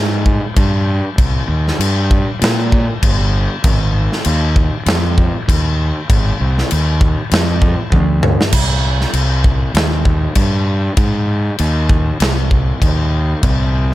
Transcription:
Already playing: G#2
0.26 kick
0.56 G2, kick, crash
1.18 C2, kick, crash
1.48 D#2
1.68 snare
1.79 G2, crash
2.11 kick
2.42 A#2, snare, crash
2.72 kick
3.03 G1, kick, crash
3.64 G#1, kick, crash
4.12 snare
4.25 D#2, crash
4.56 kick
4.86 F2, snare, crash
5.18 kick
5.48 D#2, kick, crash
6.10 G#1, kick, crash
6.40 C2
6.58 snare
6.71 D#2, crash
7.01 kick
7.31 F2, snare, crash
7.62 kick
7.92 D2, kick, high tom
8.23 mid tom
8.41 snare
8.53 C2, kick, crash
9.01 snare
9.13 C2, crash
9.44 kick
9.74 D#2, snare, crash
10.05 kick
10.35 G2, kick, crash
10.97 G#2, kick, crash
11.59 D#2, crash
11.89 kick
12.20 C2, snare, crash
12.51 kick
12.82 D#2, kick, crash
13.43 C2, kick, crash

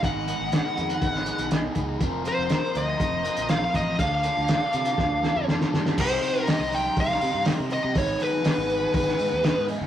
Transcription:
Already playing: D#5
0.01 G#1 G#2 D#3 G#3 B3 D#4 G#4 F#5 G#5 B5, kick, closed hi-hat
0.05 F#5
0.26 G#3 B3 D#4 G#4, closed hi-hat
0.41 G#1
0.51 G#2 D#3 G#3 B3 D#4 G#4, snare, closed hi-hat
0.77 F2, closed hi-hat
0.90 closed hi-hat
1.02 G#1, kick, closed hi-hat
1.15 snare
1.26 G#3 B3 D#4 G#4, closed hi-hat
1.38 B1, closed hi-hat
1.51 G#3 B3 D#4 G#4, snare, closed hi-hat
1.75 C#2 G#3 B3 D#4 G#4, kick, closed hi-hat
2.00 F1 F3 C4 F4 A#4 F5 A#5 C6, kick, closed hi-hat
2.04 C5
2.24 C4 F4 A#4 C5, closed hi-hat
2.38 F1
2.49 F3 C4 F4 A#4, snare, closed hi-hat
2.75 D2 D#5, closed hi-hat
3.00 F1, kick, closed hi-hat
3.23 C4 F4 A#4, closed hi-hat
3.37 A#1, closed hi-hat
3.48 F3 C4 F4 A#4 F5, snare, closed hi-hat
3.74 A1 C4 F4 A#4 D#5, kick, closed hi-hat
3.98 D2 D3 D4 F4 A4 D5 F5 A5 D6, kick, closed hi-hat
4.23 D4 F4 A4, closed hi-hat
4.37 D2
4.48 D3 D4 F4 A4, snare, closed hi-hat
4.73 C3, closed hi-hat
4.85 closed hi-hat
4.98 D2, kick, snare
5.23 D4 F4 A4, snare
5.36 F2
5.47 D3 D4 F4 A4, snare
5.61 snare
5.72 G2 D4 F4 A4, snare
5.86 snare
5.97 C2 C3 G3 C4 D#4 G4 C5 D#5 G5 A#5 C6, kick, crash
6.23 open hi-hat
6.46 C3 G3 C4 D#4 G4 D#5, snare, open hi-hat
6.59 C2
6.72 G5, open hi-hat
6.97 C2 F5, kick, open hi-hat
7.10 snare
7.20 C3 C4 D#4 G4, open hi-hat
7.34 G2
7.45 G3 C4 D#4 G4, snare, open hi-hat
7.60 C3
7.69 C4 D#4 G4 D#5, open hi-hat
7.84 C3
7.94 G#1 G#2 D#3 G#3 B3 D#4 G#4 F#5 G#5 B5, kick, open hi-hat
7.98 C#5
8.20 B4, open hi-hat
8.42 G#2 D#3 G#3 B3 D#4 G#4, snare, open hi-hat
8.58 G#1
8.70 open hi-hat
8.94 G#1, kick, open hi-hat
9.08 snare
9.17 G#2 G#3 B3 D#4 G#4, open hi-hat
9.33 D#2
9.42 G#3 B3 D#4 G#4, snare, open hi-hat
9.57 G#2
9.68 G#3 B3 D#4 G#4, open hi-hat
9.81 F#1

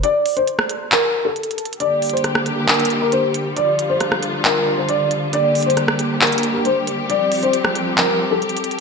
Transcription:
0.03 D5, closed hi-hat
0.26 closed hi-hat, open hi-hat
0.37 C5, closed hi-hat
0.47 closed hi-hat
0.59 cross-stick
0.69 closed hi-hat
0.92 A#4, clap, closed hi-hat
1.25 A4
1.36 closed hi-hat
1.43 closed hi-hat
1.51 closed hi-hat
1.58 closed hi-hat
1.65 closed hi-hat
1.73 closed hi-hat
1.80 D3 G3 A#3 G4 D5, closed hi-hat
2.02 closed hi-hat, open hi-hat
2.10 C5, closed hi-hat
2.17 closed hi-hat
2.24 cross-stick, closed hi-hat
2.35 cross-stick
2.46 closed hi-hat
2.68 A#4, clap, closed hi-hat
2.74 closed hi-hat
2.80 closed hi-hat
2.85 closed hi-hat
2.90 closed hi-hat
3.02 A#4
3.12 C5, closed hi-hat
3.34 closed hi-hat
3.56 D3 F3 F4 D5, closed hi-hat
3.79 closed hi-hat
3.90 C5
4.00 cross-stick, closed hi-hat
4.12 cross-stick
4.23 closed hi-hat
4.45 A#4, clap, closed hi-hat
4.78 C5
4.89 D5, closed hi-hat
5.11 closed hi-hat
5.33 G3 A#3 G4 D5, closed hi-hat
5.55 closed hi-hat, open hi-hat
5.63 C5, closed hi-hat
5.70 closed hi-hat
5.77 cross-stick, closed hi-hat
5.88 cross-stick
5.99 closed hi-hat
6.21 A#4, clap, closed hi-hat
6.27 closed hi-hat
6.32 closed hi-hat
6.38 closed hi-hat
6.43 closed hi-hat
6.55 A#4
6.65 C5, closed hi-hat
6.87 closed hi-hat
7.09 F3 C4 D5, closed hi-hat
7.32 closed hi-hat, open hi-hat
7.43 C5, closed hi-hat
7.53 closed hi-hat
7.65 cross-stick
7.75 closed hi-hat
7.98 A#4, clap, closed hi-hat
8.31 A4
8.42 closed hi-hat
8.49 closed hi-hat
8.57 closed hi-hat
8.64 closed hi-hat
8.71 closed hi-hat

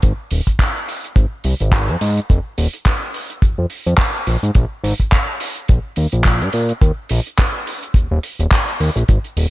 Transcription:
0.02 G#1, kick, closed hi-hat
0.31 D#1, open hi-hat
0.47 kick, closed hi-hat
0.59 kick, clap, closed hi-hat
0.76 closed hi-hat
0.89 open hi-hat
1.04 closed hi-hat
1.16 G#1, kick, closed hi-hat
1.44 C2, open hi-hat
1.60 G#1, closed hi-hat
1.72 kick, clap, closed hi-hat
1.88 F2, closed hi-hat
2.01 G#2, open hi-hat
2.17 closed hi-hat
2.30 F1, kick, closed hi-hat
2.58 D#1, open hi-hat
2.73 closed hi-hat
2.86 kick, clap, closed hi-hat
3.14 open hi-hat
3.30 closed hi-hat
3.42 F2, kick, closed hi-hat
3.58 F2
3.70 open hi-hat
3.86 F2, closed hi-hat
3.98 kick, clap, closed hi-hat
4.15 closed hi-hat
4.27 A#1, open hi-hat
4.43 G#2, closed hi-hat
4.55 A#1, kick, closed hi-hat
4.84 G#1, open hi-hat
5.00 kick, closed hi-hat
5.12 kick, clap, closed hi-hat
5.40 open hi-hat
5.55 closed hi-hat
5.68 A#1, kick, closed hi-hat
5.96 D#2, open hi-hat
6.12 A#1, closed hi-hat
6.24 kick, clap, closed hi-hat
6.41 G2, closed hi-hat
6.53 A#2, open hi-hat
6.69 closed hi-hat
6.81 D#2, kick, closed hi-hat
7.09 A#1, open hi-hat
7.27 closed hi-hat
7.38 kick, clap, closed hi-hat
7.67 open hi-hat
7.83 closed hi-hat
7.94 D#1, kick, closed hi-hat
8.11 D#1
8.23 open hi-hat
8.39 D#1, closed hi-hat
8.51 kick, clap, closed hi-hat
8.68 closed hi-hat
8.80 D#2, open hi-hat
8.96 A#1, closed hi-hat
9.08 G#1, kick, closed hi-hat
9.24 closed hi-hat
9.37 D#1, open hi-hat

